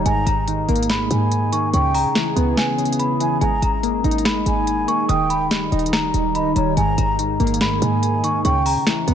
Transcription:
Already playing: D#4
0.06 G#1 G#2 G#3 G#4 G#5 A#5, closed hi-hat
0.26 G#1 A#5, closed hi-hat
0.48 D#3, closed hi-hat
0.68 G#1 A#3, closed hi-hat
0.76 closed hi-hat
0.83 closed hi-hat
0.90 G#2 B5, snare, closed hi-hat
1.11 G#2 G#5, closed hi-hat
1.32 closed hi-hat
1.52 D#3 C#6, closed hi-hat
1.73 C#2 C#3 C#4 E4 G5 C#6, closed hi-hat
1.94 A#5, open hi-hat
2.05 C#3
2.15 E3, snare, closed hi-hat
2.36 C#2 B3, closed hi-hat
2.57 C#3 G#5, snare, closed hi-hat
2.78 C#3, closed hi-hat
2.85 closed hi-hat
2.93 closed hi-hat
2.99 B5, closed hi-hat
3.20 E3 G#5, closed hi-hat
3.41 G#1 G#3 D#4 G#5 A#5, closed hi-hat
3.62 G#1 A#5, closed hi-hat
3.83 A#3, closed hi-hat
4.04 G#1 D#4, closed hi-hat
4.11 closed hi-hat
4.18 closed hi-hat
4.25 G#3 B5, snare, closed hi-hat
4.46 G#1 G#3 G#5, closed hi-hat
4.67 closed hi-hat
4.88 A#3 C#6, closed hi-hat
5.09 D#1 D#3 G4 G5 D#6, closed hi-hat
5.30 B5, closed hi-hat
5.51 G3, snare, closed hi-hat
5.72 D#1 D#4, closed hi-hat
5.79 closed hi-hat
5.86 closed hi-hat
5.93 D#3 A#5, snare, closed hi-hat
6.14 D#1 D#3, closed hi-hat
6.35 D#5 B5, closed hi-hat
6.56 D#1 G3 C#5 A#5, closed hi-hat
6.77 G#1 G#2 G#3 G#4 G#5 A#5, closed hi-hat
6.98 G#1 A#5, closed hi-hat
7.19 D#3, closed hi-hat
7.40 G#1 A#3, closed hi-hat
7.47 closed hi-hat
7.54 closed hi-hat
7.61 G#2 B5, snare, closed hi-hat
7.82 G#2 G#5, closed hi-hat
8.03 closed hi-hat
8.24 D#3 C#6, closed hi-hat
8.45 C#2 C#3 C#4 E4 B4 G5 C#6, closed hi-hat
8.66 A#5, open hi-hat
8.76 C#3
8.87 E3, snare, closed hi-hat
9.07 C#2 B3, closed hi-hat

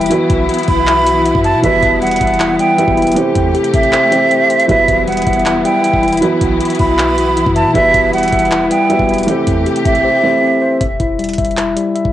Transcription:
Already playing: E3 F#3 G3 B3 E4 B4 E5
0.01 closed hi-hat
0.06 E3, closed hi-hat
0.10 F#3 B3 F#4 B4, closed hi-hat
0.30 B1, kick, closed hi-hat
0.49 F#4, closed hi-hat
0.54 closed hi-hat
0.59 closed hi-hat
0.63 closed hi-hat
0.68 B1 E4 B5, kick, open hi-hat
0.87 E5, clap, closed hi-hat
1.06 F#4, closed hi-hat
1.25 E4, closed hi-hat
1.35 F#2, kick
1.44 E5 A5, closed hi-hat
1.54 B2
1.62 E1 E3 G3 B3 F#4 B4 E5, kick, closed hi-hat
1.83 E1 E4, kick, closed hi-hat
2.02 G3 F#5, closed hi-hat
2.07 closed hi-hat
2.11 closed hi-hat
2.16 closed hi-hat
2.21 E1 E5, kick, closed hi-hat
2.27 closed hi-hat
2.34 closed hi-hat
2.40 E4, clap, closed hi-hat
2.59 G3 G5, closed hi-hat
2.78 E3 F#3 G3 B3 B4 E5, closed hi-hat
2.88 E1, kick
2.97 E4, closed hi-hat
3.02 closed hi-hat
3.07 closed hi-hat
3.12 E3 A3, closed hi-hat
3.16 C3 A3 C4 G4 C5, closed hi-hat
3.35 E2, kick, closed hi-hat
3.55 G4, closed hi-hat
3.64 closed hi-hat
3.74 A1 C4 E5, kick, closed hi-hat
3.83 closed hi-hat
3.93 C5, clap, closed hi-hat
4.11 E3 A3 C4 G4 C5, closed hi-hat
4.31 C4, closed hi-hat
4.50 C5, closed hi-hat, open hi-hat
4.60 closed hi-hat
4.68 E1 E3 F#3 G3 B3 E4 B4 E5, kick, closed hi-hat
4.88 E1 E4, kick, closed hi-hat
5.07 G3 F#5, closed hi-hat
5.12 closed hi-hat
5.17 closed hi-hat
5.22 closed hi-hat
5.27 E1 E5, kick, closed hi-hat
5.33 closed hi-hat
5.39 closed hi-hat
5.46 E4, clap, closed hi-hat
5.65 G3 G5, closed hi-hat
5.84 E5, closed hi-hat
5.94 E1, kick
6.03 E4, closed hi-hat
6.08 closed hi-hat
6.13 closed hi-hat
6.17 E3, closed hi-hat
6.22 F#3 B3 F#4 B4, closed hi-hat
6.41 B1, kick, closed hi-hat
6.60 F#4, closed hi-hat
6.65 closed hi-hat
6.70 closed hi-hat
6.75 closed hi-hat
6.79 B1 E4 B5, kick, open hi-hat
6.99 E5, clap, closed hi-hat
7.18 F#4, closed hi-hat
7.37 E4, closed hi-hat
7.46 F#2, kick
7.56 E5 A5, closed hi-hat
7.66 B2
7.74 E1 E3 G3 B3 F#4 B4 E5, kick, closed hi-hat
7.94 E1 E4, kick, closed hi-hat
8.13 G3 F#5, closed hi-hat
8.18 closed hi-hat
8.23 closed hi-hat
8.28 closed hi-hat
8.32 E1 E5, kick, closed hi-hat
8.39 closed hi-hat
8.45 closed hi-hat
8.51 E4, clap, closed hi-hat
8.71 G3 G5, closed hi-hat
8.89 E3 F#3 G3 B3 B4 E5, closed hi-hat
8.99 E1, kick
9.09 E4, closed hi-hat
9.14 closed hi-hat
9.18 closed hi-hat
9.23 E3, closed hi-hat
9.27 C3 A3 C4 G4 C5, closed hi-hat
9.47 E2, kick, closed hi-hat
9.66 G4, closed hi-hat
9.76 closed hi-hat
9.85 A1 C4 E5, kick, closed hi-hat
9.95 closed hi-hat
10.04 C5
10.23 E3 A3 C4 G4 C5
10.43 C4
10.62 C5
10.81 E1 E5, kick, closed hi-hat
11.00 E1 E4, kick, closed hi-hat
11.19 G3, closed hi-hat
11.24 closed hi-hat
11.29 closed hi-hat
11.33 closed hi-hat
11.38 E1 E5, kick, closed hi-hat
11.45 closed hi-hat
11.51 closed hi-hat
11.57 E4, clap, closed hi-hat
11.76 G3, closed hi-hat
11.95 E5, closed hi-hat
12.05 E1, kick

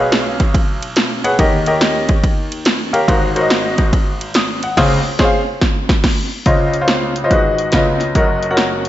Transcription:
Already playing: B1 B2 G#4 B4 C#5 F5
0.12 snare, ride bell
0.40 kick, snare, ride bell
0.54 kick, ride bell
0.83 ride bell
0.96 snare, ride bell
1.24 G#4 B4 C#5 F#5, ride bell
1.39 D#2 D#3 G4 A#4 C#5 D#5, kick, ride bell
1.66 G4 A#4 C#5 D#5, ride bell
1.81 snare, ride bell
2.09 kick, ride bell
2.24 kick, ride bell
2.52 ride bell
2.65 snare, ride bell
2.93 G4 A#4 C#5 F5, ride bell
3.08 G#1 G#2 F#4 A#4 C5 F5, kick, ride bell
3.36 F#4 A#4 C5 C#5, ride bell
3.41 D#5
3.50 snare, ride bell
3.78 kick, snare, ride bell
3.93 kick, ride bell
4.21 ride bell
4.34 D#6, snare, ride bell
4.63 F#5, ride bell
4.77 C#2 C#3 G#4 C5 C#5 F5, kick, snare, crash
5.19 G#4 C5 C#5, kick, snare
5.25 F5
5.61 kick, snare
5.89 kick, snare
6.04 kick, snare, crash
6.46 C#2 C#3 F4 C5 C#5 D#5, kick, closed hi-hat
6.74 closed hi-hat
6.81 F4 C5 C#5 F5
6.88 snare, closed hi-hat
7.16 closed hi-hat
7.24 F4 C5 C#5 D#5
7.31 G#1 G#2 F#4 G#4 B4 D#5, kick, closed hi-hat
7.58 closed hi-hat
7.72 C#2 C#3 F4 B4 C#5 D#5, kick, snare, closed hi-hat
8.00 snare, closed hi-hat
8.15 F#1 F#2 F#4 A#4 C#5 D#5, kick, closed hi-hat
8.43 closed hi-hat
8.50 F#4 A#4 C#5 F#5
8.57 snare, closed hi-hat
8.85 closed hi-hat

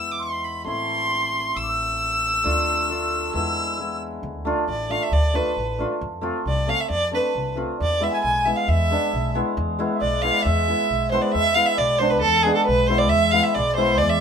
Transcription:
Already playing: E2 G#3 B3 E4 E6
0.11 D6
0.20 C6
0.44 B5
0.64 A1 A3 C4 E4 C6
1.55 A1 E6
1.63 D6
1.69 E6
2.44 D2 A3 D4 F4
2.90 A3 D4 F4
3.33 E2 G#3 B3 E4 E6
3.78 G#3 B3 E4
4.23 D2
4.45 A3 D4 F4
4.68 A1 D5
4.89 A3 D4 F4 F5
5.03 E5
5.12 D2 D5
5.33 A3 D4 F4 B4
5.57 A1
5.78 A3 D4 F4
6.01 F2
6.21 A3 C4 F4
6.45 C2 D5
6.67 A3 C4 G#4 F5
6.81 E5
6.90 F2 D5
7.11 A3 C4 D4 B4
7.35 C2
7.55 A3 C4 F4
7.79 E2 D5
8.00 G#3 B3 E4 E5
8.12 G#5
8.22 B1 G#5
8.46 G#3 B3 E4 E5
8.56 F5
8.68 E2 E5
8.91 G#3 B3 D4
9.13 B1
9.35 G#3 B3 E4
9.57 E2
9.79 G#3 B3 E4
9.95 E5
10.01 B1 D5
10.22 G#3 B3 E4 F5
10.42 E2 E5
10.68 G#3 B3 E4
10.90 B1
11.11 G#3 B3 E4 C5
11.22 D5
11.32 E2 E5
11.55 G#3 B3 E4 F5
11.65 E5
11.76 B1 D5
11.98 G#3 B3 D4 C5
12.10 B4
12.20 E2 A4
12.43 G#3 B3 D4 G#4
12.54 A4
12.65 B1 B4
12.87 G#3 B3 E4 C5
12.98 D5
13.09 E2 E5
13.31 G#3 B3 E4 F5
13.43 E5
13.54 B1 D5
13.76 G#3 B3 E4 C5
13.98 E2 D5
14.09 E5

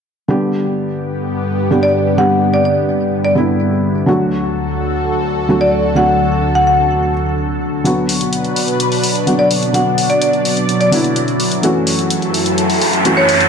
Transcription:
0.28 G2 D3 G3 B3 G4
1.71 D3 G3 B3 G4
1.83 D5
2.17 D3 G3 B3 G4 F#5
2.54 D5
2.65 D5
3.25 D5
3.35 D3 G3 B3 E4
4.06 D2 D3 F#3 A3 F#4 A4
5.49 D3 F#3 A3 F#4
5.61 D5
5.95 D3 F#3 A3 F#4 F#5
6.55 F#5
6.67 F#5
7.84 B2 D3 F#3 B3 D4 F#4 B4, closed hi-hat
8.09 open hi-hat
8.21 closed hi-hat
8.33 closed hi-hat
8.44 closed hi-hat
8.56 open hi-hat
8.68 closed hi-hat
8.80 closed hi-hat
8.92 open hi-hat
9.04 open hi-hat
9.15 closed hi-hat
9.27 D3 F#3 B3 F#4, closed hi-hat
9.39 D5
9.51 open hi-hat
9.63 closed hi-hat
9.73 D3 F#3 B3 F#4 D5 F#5, closed hi-hat
9.98 open hi-hat
10.10 D5, closed hi-hat
10.22 D5, closed hi-hat
10.33 closed hi-hat
10.45 open hi-hat
10.57 closed hi-hat
10.69 closed hi-hat
10.81 D5, closed hi-hat
10.91 D3 F#3 B3 E4, open hi-hat
11.04 closed hi-hat
11.16 closed hi-hat
11.28 closed hi-hat
11.40 open hi-hat
11.52 closed hi-hat
11.62 F#2 E3 A3 C#4 E4 F#4 A4, closed hi-hat, riser
11.87 open hi-hat
11.99 closed hi-hat
12.10 closed hi-hat
12.22 closed hi-hat
12.34 open hi-hat
12.46 closed hi-hat
12.58 closed hi-hat
12.70 open hi-hat
12.81 open hi-hat
12.93 closed hi-hat
13.04 E3 A3 C#4 F#4, closed hi-hat
13.17 C#5
13.29 open hi-hat
13.40 closed hi-hat

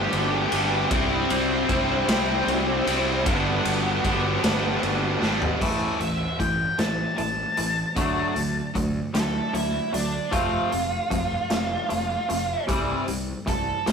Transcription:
Already playing: G2 D3 G3 B3 D4 G4 G5
0.12 G1 D3 G3 B3 D4, ride
0.51 G1 G2 D3 G3 B3 D4, ride
0.90 C2 C3 G3 C4 E4 E5, kick, ride
1.29 C2 G3 C4 E4 C5, ride
1.69 C2 C3 G3 C4 E4, kick, ride
2.08 C2 C3 G3 C4 E4 C5, snare, ride
2.47 C2 C3 G3 C4 E4, ride
2.86 C2 C3 G3 C4 E4, ride
3.25 G1 G2 D3 G3 B3 D4 B4, kick, ride
3.63 G1 G3 B3 D4, ride
4.03 G1 D3 G3 B3 D4, kick, ride
4.42 G1 G2 D3 G3 B3 D4, snare, ride
4.81 G1 D3 G3 B3 D4, ride
5.21 G#1 G2 D3 G3 B3 D4, snare
5.42 floor tom
5.60 A1 A2 E3 A3, kick, crash
6.00 A1 A2 E3 E5, closed hi-hat
6.39 A1 A2 E3 G5, kick, closed hi-hat
6.79 A1 A2 E3 A5, snare, closed hi-hat
7.17 A1 A2 E3 A5, closed hi-hat
7.57 A1 A2 E3, closed hi-hat
7.96 D2 D3 F#3 A3 D4, kick, closed hi-hat
8.35 D2 D3 F#3 A3, closed hi-hat
8.74 D2 D3 F#3 A3, kick, closed hi-hat
9.14 D2 D3 F#3 A3 A4, snare, closed hi-hat
9.53 D2 D3 F#3 A3 E4, closed hi-hat
9.93 D2 D3 F#3 A3 D4, closed hi-hat
10.32 F1 F2 C3 F3 A3 C4 F4, kick, closed hi-hat
10.71 F1 F2 C3 F3 A3, closed hi-hat
11.10 F1 F2 C3 F3 A3, kick, closed hi-hat
11.50 F1 F2 C3 F3 A3, snare, closed hi-hat
11.89 F1 F2 C3 F3 A3, closed hi-hat
12.29 F1 F2 C3 F3 A3, closed hi-hat
12.68 C2 C3 E3 G3 C4, kick, closed hi-hat
13.08 C2 C3 E3 G3, closed hi-hat
13.47 C2 C3 E3 G3 A4, kick, closed hi-hat
13.86 C2 C3 E3 G3 C5, snare, closed hi-hat

